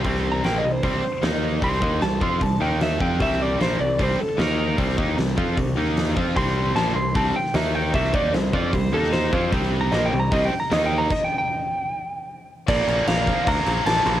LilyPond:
<<
  \new Staff \with { instrumentName = "Lead electric guitar" } { \time 4/4 \key bes \lydian \tempo 4 = 152 \tuplet 3/2 { r4 bes''8 g''8 ees''8 c''8 } c''4 r4 | c'''4 a''8 c'''8 a''8 g''8 e''8 g''8 | e''8 d''8 c''8 d''8 c''8 a'8 bes'4 | r1 |
c'''4 a''8 c'''8 a''8 g''8 e''8 g''8 | e''8 d''8 c''8 d''8 c''8 a'8 c''4 | \tuplet 3/2 { r4 bes''8 ees''8 g''8 bes''8 ees''8 g''8 bes''8 ees''8 g''8 bes''8 } | \tuplet 3/2 { ees''8 g''8 g''8~ } g''2~ g''8 r8 |
d''4 f''4 bes''4 a''4 | }
  \new Staff \with { instrumentName = "Distorted electric guitar" } { \clef bass \time 4/4 \key bes \lydian <c g c'>4 <bes, f bes>8 <c g>8 <c g c'>8 r8 <ees bes ees'>4 | <c g c'>8 <ees bes ees'>8 <c g>8 <f c' f'>8 <c g>8 <ees bes ees'>4 <f c' f'>8 | <c g c'>4 <bes, f bes>8 <c g>8 <c g c'>8 r8 <ees bes ees'>4 | <c g c'>8 <ees bes ees'>8 <c g>8 <f c' f'>8 <c g>8 <ees bes ees'>4 <f c' f'>8 |
<c g c'>4 <bes, f bes>8 <c g>8 <c g c'>8 r8 <ees bes ees'>4 | <c g c'>8 <ees bes ees'>8 <c g>8 <f c' f'>8 <c g>8 <ees bes ees'>4 <f c' f'>8 | <c g c'>4 <bes, f bes>8 <c g>8 <c g c'>8 r8 <ees bes ees'>4 | r1 |
<bes, f bes>8 <bes, f bes>8 <bes, f bes>8 <bes, f bes>8 <bes, f bes>8 <bes, f bes>8 <bes, f bes>8 <bes, f bes>8 | }
  \new Staff \with { instrumentName = "Distorted electric guitar" } { \clef bass \time 4/4 \key bes \lydian <c g c'>4 <bes, f bes>8 <c g>8 <c g c'>8 r8 <ees bes ees'>4 | <c g c'>8 <ees bes ees'>8 <c g>8 <f c' f'>8 <c g>8 <ees bes ees'>4 <f c' f'>8 | <c g c'>4 <bes, f bes>8 <c g>8 <c g c'>8 r8 <ees bes ees'>4 | <c g c'>8 <ees bes ees'>8 <c g>8 <f c' f'>8 <c g>8 <ees bes ees'>4 <f c' f'>8 |
<c g c'>4 <bes, f bes>8 <c g>8 <c g c'>8 r8 <ees bes ees'>4 | <c g c'>8 <ees bes ees'>8 <c g>8 <f c' f'>8 <c g>8 <ees bes ees'>4 <f c' f'>8 | <c g c'>4 <bes, f bes>8 <c g>8 <c g c'>8 r8 <ees bes ees'>4 | r1 |
<bes, f bes>8 <bes, f bes>8 <bes, f bes>8 <bes, f bes>8 <bes, f bes>8 <bes, f bes>8 <bes, f bes>8 <bes, f bes>8 | }
  \new Staff \with { instrumentName = "Distorted electric guitar" } { \clef bass \time 4/4 \key bes \lydian <c g c'>4 <bes, f bes>8 <c g>8 <c g c'>8 r8 <ees bes ees'>4 | <c g c'>8 <ees bes ees'>8 <c g>8 <f c' f'>8 <c g>8 <ees bes ees'>4 <f c' f'>8 | <c g c'>4 <bes, f bes>8 <c g>8 <c g c'>8 r8 <ees bes ees'>4 | <c g c'>8 <ees bes ees'>8 <c g>8 <f c' f'>8 <c g>8 <ees bes ees'>4 <f c' f'>8 |
<c g c'>4 <bes, f bes>8 <c g>8 <c g c'>8 r8 <ees bes ees'>4 | <c g c'>8 <ees bes ees'>8 <c g>8 <f c' f'>8 <c g>8 <ees bes ees'>4 <f c' f'>8 | <c g c'>4 <bes, f bes>8 <c g>8 <c g c'>8 r8 <ees bes ees'>4 | r1 |
r1 | }
  \new Staff \with { instrumentName = "Picked electric bass" } { \clef bass \time 4/4 \key bes \lydian c,4 bes,,8 c,8 c,8 r8 ees,4 | c,8 ees,8 c,8 f,8 c,8 ees,4 f,8 | c,4 bes,,8 c,8 c,8 r8 ees,4 | c,8 ees,8 c,8 f,8 c,8 ees,4 f,8 |
c,4 bes,,8 c,8 c,8 r8 ees,4 | c,8 ees,8 c,8 f,8 c,8 ees,4 f,8 | c,4 bes,,8 c,8 c,8 r8 ees,4 | r1 |
bes,,8 bes,,8 bes,,4 d,8 bes,,8 bes,,8 bes,,8 | }
  \new DrumStaff \with { instrumentName = "Drums" } \drummode { \time 4/4 <hho bd>16 sn8. <hho sn>4 <hho bd>4 <hho sn>4 | <hho bd>16 sn16 bd8 <hho sn>8 bd8 <hho bd>4 <hho sn>8 bd8 | <hho bd>16 sn8. <hho sn>4 <hho bd>4 <hho sn>4 | <hho bd>16 sn16 bd8 <hho sn>8 bd8 <hho bd>4 <hho sn>8 bd8 |
<hho bd>16 sn8. <hho sn>4 <hho bd>8. sn16 <hho sn>4 | <hho bd>16 sn16 bd8 <hho sn>8 bd8 <hho bd>8. sn16 <hho sn>8 bd8 | <hho bd>16 sn8. <hho sn>4 <hho bd>4 <hho sn>4 | <cymc bd>4 r4 r4 r4 |
<cymc bd>8 cymc8 <cymc sn>8 <cymc bd>8 <cymc bd>8 cymc8 <cymc sn>8 cymc8 | }
>>